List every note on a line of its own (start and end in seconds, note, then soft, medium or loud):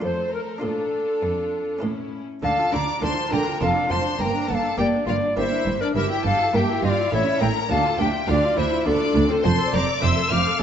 0.00 0.58 F2 medium
0.00 0.59 F2 soft
0.00 0.63 A3 soft
0.00 0.57 D4 soft
0.00 0.59 F4 soft
0.00 0.60 A4 soft
0.00 0.62 A4 soft
0.00 0.32 C5 medium
0.33 0.63 A#4 medium
0.33 0.40 A#4 medium
0.58 1.18 A2 medium
0.58 1.77 D4 soft
0.58 1.80 D4 soft
0.58 1.78 F4 soft
0.58 1.78 A4 soft
0.63 1.19 A2 soft
0.63 1.81 F4 soft
0.63 1.80 A4 medium
0.63 1.83 A4 medium
1.23 1.79 F2 medium
1.23 1.79 F2 soft
1.79 2.39 A2 medium
1.79 2.39 C#4 soft
1.79 2.22 C#4 soft
1.79 2.40 E4 soft
1.79 2.40 A4 soft
1.83 2.39 A2 soft
1.83 2.23 E4 soft
2.42 2.51 D2 medium
2.42 2.50 D3 medium
2.42 2.69 D3 medium
2.42 2.57 D4 medium
2.42 2.71 A4 medium
2.42 2.70 F5 medium
2.42 2.71 A5 medium
2.57 2.72 F4 medium
2.72 2.81 D2 medium
2.72 2.80 D3 medium
2.72 2.99 D3 medium
2.72 2.87 D4 medium
2.72 3.02 D5 medium
2.72 3.01 A#5 medium
2.72 3.02 D6 medium
2.87 3.02 F4 medium
3.01 3.10 D2 medium
3.01 3.10 D3 medium
3.01 3.29 D3 medium
3.01 3.15 D4 medium
3.01 3.44 D4 soft
3.01 3.45 F4 soft
3.01 3.45 A4 medium
3.01 3.31 C5 medium
3.01 3.34 A5 medium
3.01 3.31 C6 medium
3.16 3.31 F4 medium
3.32 3.40 D2 medium
3.32 3.58 D3 medium
3.32 3.40 D3 medium
3.32 3.46 D4 medium
3.32 3.61 A#4 medium
3.32 3.61 G5 medium
3.32 3.61 A#5 medium
3.46 3.60 F4 medium
3.61 3.69 F1 medium
3.61 3.69 F2 medium
3.61 3.87 F2 medium
3.61 4.16 D4 soft
3.61 3.75 F4 medium
3.61 4.16 F4 soft
3.61 3.90 A4 medium
3.61 4.16 A4 soft
3.61 3.92 F5 medium
3.61 3.69 A5 medium
3.76 3.90 D4 medium
3.90 3.98 F1 medium
3.90 4.17 F2 medium
3.90 3.99 F2 medium
3.90 4.05 F4 medium
3.90 4.19 C5 medium
3.90 4.22 A5 medium
3.90 4.19 C6 medium
4.04 4.19 D4 medium
4.19 4.28 G1 medium
4.19 4.46 G2 medium
4.19 4.28 G2 medium
4.19 4.33 A#3 medium
4.19 4.49 A#4 medium
4.19 4.51 G5 medium
4.19 4.49 A#5 medium
4.34 4.49 D4 medium
4.48 4.57 G1 medium
4.48 4.75 G2 medium
4.48 4.57 G2 medium
4.48 4.63 A#3 medium
4.48 4.78 A4 medium
4.48 4.55 F#5 medium
4.48 4.78 A5 medium
4.54 4.77 F5 medium
4.62 4.78 D4 medium
4.78 4.86 G1 medium
4.78 5.05 G2 medium
4.78 4.86 G2 medium
4.78 5.20 A#3 soft
4.78 4.92 A#3 medium
4.78 5.21 D4 soft
4.78 4.86 G4 medium
4.78 5.21 G4 soft
4.78 5.06 D5 medium
4.78 4.86 G5 medium
4.92 5.07 D4 medium
5.06 5.16 G1 medium
5.06 5.34 G2 medium
5.06 5.16 G2 medium
5.06 5.22 A#3 medium
5.06 5.15 F4 medium
5.06 5.36 D5 medium
5.06 5.16 F5 medium
5.21 5.36 D4 medium
5.36 5.45 G1 medium
5.36 5.63 G2 medium
5.36 5.45 G2 medium
5.36 5.50 A#3 medium
5.36 5.79 A#3 soft
5.36 5.79 D4 soft
5.36 5.80 E4 medium
5.36 5.79 G4 medium
5.36 5.82 C5 medium
5.36 5.80 E5 medium
5.50 5.66 D4 medium
5.66 5.74 G1 medium
5.66 5.74 G2 medium
5.66 5.93 G2 medium
5.66 5.81 A#3 medium
5.80 5.95 D4 medium
5.80 5.95 A#4 medium
5.80 5.87 D5 medium
5.95 6.03 G1 medium
5.95 6.03 G2 medium
5.95 6.22 G2 medium
5.95 6.10 E4 medium
5.95 6.09 G4 medium
5.95 6.10 A#4 medium
5.95 6.10 E5 loud
6.10 6.24 E4 medium
6.10 6.24 G4 medium
6.10 6.24 E5 medium
6.10 6.25 G5 medium
6.24 6.33 G1 medium
6.24 6.32 G2 medium
6.24 6.51 G2 medium
6.24 6.39 G4 medium
6.24 6.53 A4 medium
6.24 6.56 F5 medium
6.24 6.54 A5 loud
6.39 6.54 E4 medium
6.53 6.62 G1 medium
6.53 6.80 G2 medium
6.53 6.62 G2 medium
6.53 6.96 A#3 soft
6.53 6.96 E4 soft
6.53 6.67 G4 medium
6.53 6.83 G4 medium
6.53 6.96 A#4 medium
6.53 6.86 E5 medium
6.53 6.83 G5 medium
6.68 6.83 E4 medium
6.83 6.91 G1 medium
6.83 7.09 G2 medium
6.83 6.91 G2 medium
6.83 7.12 F4 medium
6.83 6.98 G4 medium
6.83 6.90 D#5 medium
6.83 7.12 F5 medium
6.89 7.12 D5 medium
6.98 7.11 E4 medium
7.12 7.20 A1 medium
7.12 7.20 A2 medium
7.12 7.38 A2 medium
7.12 7.66 C#4 soft
7.12 7.66 E4 soft
7.12 7.26 E4 medium
7.12 7.41 E4 medium
7.12 7.66 A4 soft
7.12 7.40 C#5 medium
7.12 7.41 E5 medium
7.26 7.41 C#4 medium
7.40 7.49 A1 medium
7.40 7.67 A2 medium
7.40 7.49 A2 medium
7.40 7.55 E4 medium
7.40 7.70 A#4 medium
7.40 7.47 G5 medium
7.40 7.70 A#5 loud
7.55 7.70 C#4 medium
7.70 7.96 D2 medium
7.70 7.78 D2 medium
7.70 7.83 D4 medium
7.70 7.99 A4 medium
7.70 8.01 F5 medium
7.70 7.99 A5 medium
7.84 7.99 F4 medium
7.98 8.07 D2 medium
7.98 8.25 D2 medium
7.98 8.08 D2 medium
7.98 8.13 D4 medium
7.98 8.07 G4 medium
7.98 8.28 E5 medium
7.98 8.28 G5 loud
8.13 8.28 F4 medium
8.28 8.54 D2 medium
8.28 8.36 D2 medium
8.28 8.37 D2 medium
8.28 8.41 D4 medium
8.28 8.70 D4 medium
8.28 8.70 F4 medium
8.28 8.36 F4 medium
8.28 8.70 A4 medium
8.28 8.59 D5 medium
8.28 8.57 F5 loud
8.43 8.57 F4 medium
8.57 8.65 D2 medium
8.57 8.83 D2 medium
8.57 8.66 D2 medium
8.57 8.72 D4 medium
8.57 8.86 E4 medium
8.57 8.86 C5 medium
8.57 8.86 E5 medium
8.72 8.86 F4 medium
8.86 9.12 D2 medium
8.86 8.94 D2 medium
8.86 9.28 D4 medium
8.86 9.30 D4 medium
8.86 9.00 D4 medium
8.86 9.28 F4 medium
8.86 9.29 A4 medium
8.86 9.28 A4 medium
8.86 9.29 D5 medium
9.01 9.15 F4 medium
9.15 9.23 D2 medium
9.15 9.42 D2 medium
9.15 9.24 D2 medium
9.15 9.30 D4 medium
9.29 9.44 C4 medium
9.29 9.44 F4 medium
9.29 9.45 A4 medium
9.29 9.45 C5 medium
9.44 9.53 F1 medium
9.44 9.70 F2 medium
9.44 9.53 F2 medium
9.44 9.58 C5 medium
9.44 9.73 C5 loud
9.44 9.75 A5 medium
9.44 9.73 C6 loud
9.59 9.73 A4 medium
9.73 9.82 F1 medium
9.73 9.81 F2 medium
9.73 9.99 F2 medium
9.73 9.88 C5 medium
9.73 10.02 D5 medium
9.73 10.01 A#5 medium
9.73 10.02 D6 loud
9.87 10.02 A4 medium
10.01 10.11 F1 medium
10.01 10.28 F2 medium
10.01 10.10 F2 medium
10.01 10.44 C4 medium
10.01 10.44 F4 medium
10.01 10.44 A4 medium
10.01 10.15 C5 medium
10.01 10.32 E5 medium
10.01 10.33 C6 loud
10.01 10.31 E6 loud
10.16 10.31 A4 medium
10.30 10.39 F1 medium
10.30 10.57 F2 medium
10.30 10.39 F2 medium
10.30 10.45 C5 medium
10.30 10.61 F5 loud
10.30 10.63 D6 medium
10.30 10.60 F6 loud
10.45 10.58 A4 medium
10.59 10.63 E2 medium
10.59 10.63 C#4 medium
10.59 10.63 A4 medium